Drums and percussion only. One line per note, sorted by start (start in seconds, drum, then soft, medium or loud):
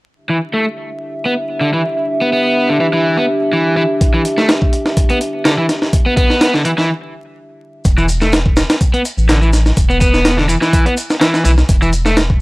4.01 kick loud
4.01 closed hi-hat medium
4.25 closed hi-hat medium
4.38 snare soft
4.49 snare loud
4.49 closed hi-hat medium
4.62 kick medium
4.73 closed hi-hat medium
4.86 snare soft
4.97 kick loud
4.97 closed hi-hat medium
5.10 closed hi-hat soft
5.21 closed hi-hat medium
5.45 snare loud
5.45 closed hi-hat medium
5.69 snare soft
5.69 closed hi-hat medium
5.82 snare soft
5.93 kick loud
5.93 closed hi-hat medium
6.17 kick medium
6.17 closed hi-hat medium
6.30 snare soft
6.41 snare loud
6.41 closed hi-hat medium
6.54 snare soft
6.65 closed hi-hat medium
6.78 snare soft
7.85 kick loud
7.85 closed hi-hat medium
7.85 shaker soft
7.98 shaker soft
8.09 closed hi-hat medium
8.09 shaker medium
8.21 snare soft
8.21 shaker soft
8.33 snare loud
8.33 closed hi-hat medium
8.33 shaker soft
8.46 kick medium
8.57 snare loud
8.57 closed hi-hat medium
8.57 shaker medium
8.70 snare loud
8.70 closed hi-hat medium
8.70 shaker soft
8.81 kick loud
8.81 closed hi-hat medium
8.81 shaker soft
8.94 closed hi-hat soft
9.05 closed hi-hat medium
9.05 shaker medium
9.18 shaker soft
9.29 snare loud
9.29 closed hi-hat medium
9.29 shaker soft
9.42 shaker soft
9.53 snare soft
9.53 closed hi-hat medium
9.53 shaker medium
9.66 snare soft
9.66 shaker soft
9.77 kick loud
9.77 closed hi-hat medium
9.77 shaker soft
9.90 shaker soft
10.01 kick medium
10.01 closed hi-hat medium
10.01 shaker medium
10.14 snare soft
10.14 shaker soft
10.25 snare loud
10.25 closed hi-hat medium
10.25 shaker soft
10.38 snare soft
10.49 closed hi-hat medium
10.49 shaker medium
10.62 snare soft
10.62 shaker soft
10.73 kick loud
10.73 closed hi-hat medium
10.73 shaker soft
10.86 closed hi-hat soft
10.97 closed hi-hat medium
10.97 shaker medium
11.10 snare medium
11.10 shaker soft
11.21 snare loud
11.21 closed hi-hat medium
11.21 shaker soft
11.34 snare medium
11.34 shaker soft
11.45 closed hi-hat medium
11.45 shaker medium
11.58 snare soft
11.58 shaker soft
11.69 kick loud
11.69 closed hi-hat medium
11.69 shaker soft
11.82 shaker soft
11.93 closed hi-hat medium
11.93 shaker medium
12.06 snare soft
12.06 shaker soft
12.17 snare loud
12.17 closed hi-hat medium
12.17 shaker soft
12.30 kick medium